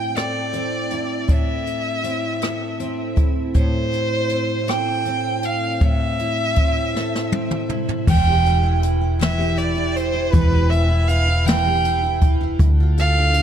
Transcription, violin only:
Already playing: G5
0.17 D5
1.31 E5
3.55 C5
4.69 G5
5.45 F5
5.83 E5
8.09 G5
9.21 E5
9.58 D5
9.96 C5
10.32 B4
10.70 E5
11.08 F5
11.47 G5
13.00 F5

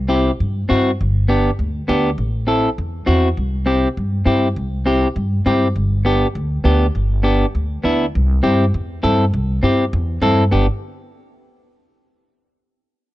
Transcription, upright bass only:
Already playing: C2
0.40 G2
0.71 G2
1.01 G1
1.59 D2
1.89 D2
2.18 A1
2.78 E2
3.08 E2
3.37 C2
3.97 G2
4.26 G2
4.56 C2
5.16 G2
5.46 G2
5.76 G1
6.35 D2
6.65 D2
6.95 G1
7.55 D2
7.84 D2
8.15 C2
8.44 G2
8.74 E2
9.04 G2
9.34 C2
9.63 G2
9.93 E2
10.22 G2
10.52 G1

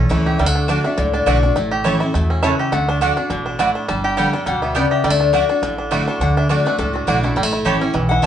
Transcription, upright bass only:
0.11 C#2
0.39 D2
0.98 C#2
1.26 B1
1.55 A1
2.14 E2
2.72 D2
3.30 A1
3.88 G1
4.46 D2
5.04 D2
5.62 A1
6.20 D2
6.78 C#2
7.08 B1
7.37 A1
7.66 A1
7.94 B1

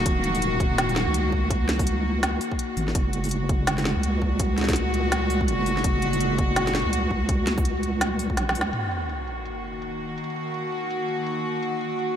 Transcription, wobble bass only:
0.06 D#1
1.07 C#2
2.77 G#1
2.95 F#1
3.96 C#2
5.48 F#1
5.84 F#1
6.86 C#2
8.37 A#1
8.55 C#2

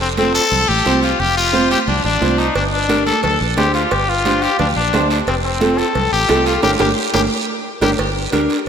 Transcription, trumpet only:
0.01 C4
0.18 C4
0.35 A4
0.68 G4
1.02 F4
1.20 G4
1.37 F4
1.71 G4
1.88 D4
2.05 D4
2.38 D#4
2.56 D4
2.72 D4
3.06 A4
3.23 A4
3.57 G4
3.74 F4
3.92 G4
4.09 F4
4.42 G4
4.60 D4
4.76 D4
5.10 D4
5.28 C4
5.44 C4
5.78 A4
6.12 G4
6.47 F4
6.63 G4
6.79 G4
7.13 G4
7.82 G4

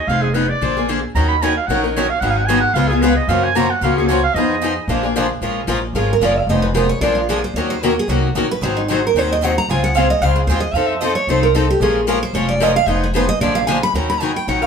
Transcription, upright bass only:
0.07 F1
0.61 A#1
1.15 D#2
1.68 A#1
2.21 G#1
2.74 C#2
3.28 F#2
3.81 C#2
4.34 F2
4.88 A#1
5.41 A#1
5.67 A#1
5.93 G#1
6.20 F#1
6.47 F1
7.00 A#1
7.54 D#2
8.08 C2
8.35 A#1
8.62 G#1
9.14 D#2
9.68 C#2
10.21 C#2
10.47 D#2
10.73 F2
11.27 C2
11.80 A#1
12.33 F1
12.87 F1
13.40 A#1
13.93 D#2
14.47 A#1

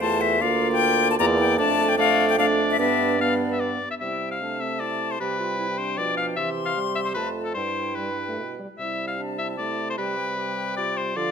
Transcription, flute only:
0.01 A5
0.21 E5
0.42 F5
0.72 G5
1.11 A5
1.19 A#5
1.39 G5
1.59 A5
1.89 G5
1.99 F5
2.29 G5
2.39 F5
2.70 E5
2.80 E5
3.21 D5
4.02 G5
4.42 A5
5.22 G5
6.38 C6
7.16 A5
7.56 G5
9.19 A5
9.98 G5
10.38 G5
11.17 F5

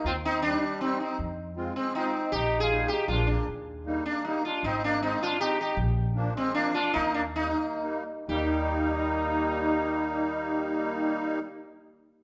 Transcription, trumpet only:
0.07 C4
0.26 C4
0.46 G3
0.83 G3
1.01 C4
1.78 G#3
1.96 C4
2.33 D#4
2.62 F4
2.92 D#4
3.12 D4
3.31 A#3
4.09 A#3
4.27 A#3
4.47 D4
4.66 C4
4.85 A#3
5.04 C4
5.22 D4
5.40 D#4
5.60 D#4
6.36 G#3
6.55 A#3
6.74 D4
6.94 A#3
7.15 A#3
7.38 A#3
8.28 D#4

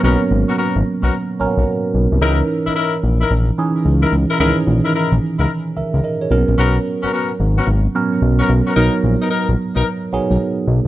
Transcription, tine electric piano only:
Already playing: F#3 A#3 B3 C#4 C#5
0.03 F#3 A#3 C#4 A#4
0.10 B3
1.40 F#3 A#3 C#4 A#4
1.47 B3
2.21 E3 C#4 D#4 A#4
3.58 E3 C#4 D#4 G#4
4.39 D#3 C#4 D#4 G#4
4.46 E3
5.77 A#4 E5
6.04 A#4 D#5
6.21 G#4 C#5
6.30 F#3 A#3 C#4 A#4
6.37 B3
7.94 F#3 B3 C#4 A#4
8.76 F#3 B3 D#4 A#4
10.12 F#3 B3 D#4 G#4

